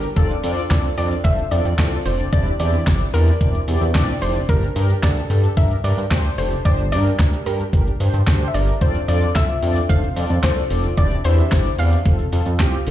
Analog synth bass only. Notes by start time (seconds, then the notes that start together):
0.17 F1
0.44 F2
0.71 C2
0.98 F2
1.25 F1
1.52 F2
1.65 F2
1.79 C2
2.06 F1
2.33 E1
2.60 E2
2.87 G1
3.14 E2
3.41 E1
3.68 E2
3.81 E2
3.95 A#1
4.22 F1
4.49 G1
4.76 G2
5.03 D2
5.30 G2
5.57 G1
5.84 G2
5.98 G2
6.11 D2
6.38 F1
6.65 G1
6.92 G2
7.19 D2
7.46 G2
7.73 G1
8.00 G2
8.14 G2
8.27 D2
8.54 G1
8.81 F1
9.08 F2
9.36 C2
9.62 F2
9.89 F1
10.16 F2
10.30 F2
10.43 C2
10.71 F1
10.98 E1
11.25 E2
11.52 G1
11.79 E2
12.06 F1
12.33 F2
12.46 F2
12.60 C2
12.87 F1